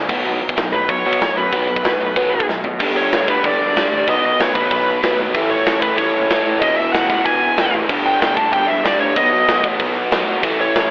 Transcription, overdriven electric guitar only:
0.09 0.24 B2 medium
0.09 0.24 F#3 medium
0.09 0.25 B3 loud
0.25 0.40 B2 loud
0.25 0.41 F#3 medium
0.25 0.41 B3 loud
0.41 0.56 B2 medium
0.41 0.56 F#3 medium
0.57 0.72 B2 medium
0.57 0.72 F#3 medium
0.74 0.88 B2 medium
0.74 0.88 F#3 medium
0.90 1.04 B2 medium
0.90 1.04 F#3 medium
1.05 1.19 B2 medium
1.05 1.20 F#3 medium
1.05 1.21 B3 loud
1.21 1.35 B2 medium
1.21 1.36 F#3 medium
1.37 1.51 B2 medium
1.37 1.52 F#3 medium
1.52 1.67 B2 medium
1.52 1.67 F#3 loud
1.52 1.68 B3 loud
1.68 1.83 B2 medium
1.68 1.83 F#3 medium
1.85 1.99 B2 medium
1.85 2.00 F#3 medium
2.01 2.15 B2 medium
2.01 2.15 F#3 medium
2.16 2.32 B2 medium
2.16 2.32 F#3 medium
2.16 2.32 B3 loud
2.33 2.47 B2 medium
2.33 2.47 F#3 medium
2.49 2.63 B2 medium
2.49 2.64 F#3 medium
2.65 2.79 B2 medium
2.65 2.79 F#3 medium
2.80 3.27 G2 loud
2.80 3.28 D3 loud
2.80 3.26 G3 loud
3.27 3.75 G2 medium
3.27 3.75 D3 medium
3.27 3.75 G3 medium
3.76 4.07 G2 medium
3.76 4.07 D3 medium
3.76 4.08 G3 medium
4.08 4.54 B2 loud
4.08 4.55 F#3 medium
4.08 4.54 B3 loud
4.55 5.01 B2 medium
4.55 5.02 F#3 medium
4.55 5.02 B3 medium
5.02 5.34 B2 medium
5.02 5.34 F#3 medium
5.02 5.35 B3 medium
5.34 5.81 A2 loud
5.34 5.83 E3 loud
5.34 5.81 A3 loud
5.82 6.28 A2 medium
5.82 6.29 E3 medium
5.82 6.29 A3 medium
6.29 6.61 A2 medium
6.29 6.61 E3 medium
6.29 6.62 A3 loud
6.62 7.09 E2 medium
6.62 7.09 B2 medium
6.62 7.08 E3 loud
7.10 7.56 E2 medium
7.10 7.57 B2 medium
7.10 7.56 E3 medium
7.57 7.88 E2 medium
7.57 7.89 B2 medium
7.57 7.90 E3 medium
7.89 8.36 G2 medium
7.89 8.37 D3 loud
7.89 8.36 G3 loud
8.37 8.83 G2 medium
8.37 8.84 D3 medium
8.37 8.84 G3 medium
8.84 9.15 G2 medium
8.84 9.15 D3 medium
8.84 9.16 G3 medium
9.16 9.63 B2 medium
9.16 9.63 F#3 medium
9.16 9.62 B3 loud
9.63 10.10 B2 medium
9.63 10.11 F#3 medium
9.63 10.11 B3 medium
10.11 10.42 B2 medium
10.11 10.43 F#3 medium
10.11 10.43 B3 medium
10.43 10.90 A2 loud
10.43 10.91 E3 loud
10.43 10.90 A3 loud

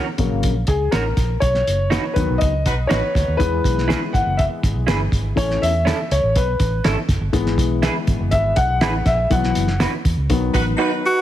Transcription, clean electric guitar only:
0.92 1.03 C#4 medium
0.92 1.03 F#4 medium
0.92 1.04 A#4 medium
1.90 2.01 D#4 medium
1.90 2.02 F#4 loud
1.90 2.02 B4 medium
2.89 3.00 D#4 medium
2.89 3.00 F#4 medium
2.89 3.01 B4 medium
3.88 3.99 E4 medium
3.88 3.99 G#4 medium
3.88 3.99 B4 loud
4.87 4.97 E4 medium
4.87 4.98 G#4 medium
4.87 4.98 B4 medium
5.85 5.96 C#4 medium
5.85 5.97 E4 medium
5.85 5.97 A4 medium
6.84 6.95 C#4 medium
6.84 6.95 E4 medium
6.84 6.95 A4 medium
7.82 7.93 E4 medium
7.82 7.94 G#4 medium
7.82 7.94 B4 loud
8.81 8.92 E4 medium
8.81 8.92 G#4 medium
8.81 8.93 B4 medium
9.80 9.90 E4 medium
9.80 9.91 F#4 medium
9.80 9.91 B4 medium
10.78 10.89 D#4 medium
10.78 10.89 F#4 medium
10.78 10.89 B4 loud

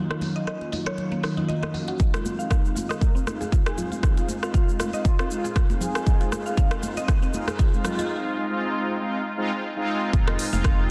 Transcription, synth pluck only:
0.11 0.21 D#4 medium
0.36 0.46 D#5 medium
0.47 0.61 D#5 medium
0.72 0.85 D#4 medium
0.86 0.93 C#5 loud
1.12 1.18 A#3 medium
1.23 1.36 D#4 medium
1.37 1.48 D#4 medium
1.48 1.61 D#5 medium
1.63 1.74 D#5 medium
1.74 1.87 F#4 medium
1.88 1.99 F#4 loud
2.14 2.24 F4 medium
2.39 2.49 F5 medium
2.50 2.64 F5 medium
2.75 2.88 F4 medium
2.89 2.96 D#5 loud
3.15 3.21 C4 medium
3.41 3.47 G#4 medium
3.52 3.65 F4 medium
3.78 3.90 F4 medium
3.92 4.02 F4 medium
4.17 4.28 F4 medium
4.43 4.53 F5 medium
4.54 4.67 F5 loud
4.80 4.92 F4 medium
4.94 5.00 D#5 loud
5.19 5.25 C4 medium
5.44 5.50 G#4 medium
5.56 5.69 F4 medium
5.81 5.94 F4 medium
5.96 6.06 F4 medium
6.21 6.31 F4 medium
6.46 6.56 F5 medium
6.58 6.71 F5 loud
6.83 6.96 F4 medium
6.97 7.03 D#5 loud
7.22 7.29 C4 medium
7.48 7.54 G#4 medium
7.60 7.72 F4 medium
7.85 7.97 F4 medium
7.99 8.09 F4 medium
10.27 10.38 F4 medium
10.53 10.63 F5 medium
10.65 10.78 F5 loud

